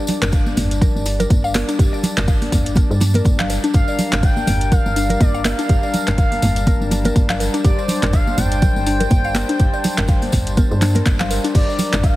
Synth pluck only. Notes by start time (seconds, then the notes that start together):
0.22 A#4
0.32 F5
0.81 A#4
1.06 D4
1.20 A#4
1.44 F5
1.55 A#4
1.68 D4
1.79 G4
1.93 D5
2.17 A#4
2.28 F5
2.77 A#4
3.01 D4
3.15 A#4
3.39 F5
3.50 A#4
3.64 D4
3.74 G4
3.88 D5
4.12 A#4
4.23 F5
4.72 A#4
4.96 D4
5.10 A#4
5.34 F5
5.45 A#4
5.59 D4
5.69 G4
5.83 D5
6.08 A#4
6.18 F5
6.67 A#4
6.91 D4
7.05 A#4
7.30 F5
7.40 A#4
7.54 D4
7.64 G4
7.78 D5
8.03 A#4
8.13 F5
8.62 A#4
8.86 D4
9.00 A#4
9.25 F5
9.35 A#4
9.49 D4
9.60 G4
9.74 D5
9.98 A#4
10.08 F5
10.57 A#4
10.82 D4
10.95 A#4
11.20 F5
11.31 A#4
11.44 D4
11.55 G4
11.69 D5
11.93 A#4
12.04 F5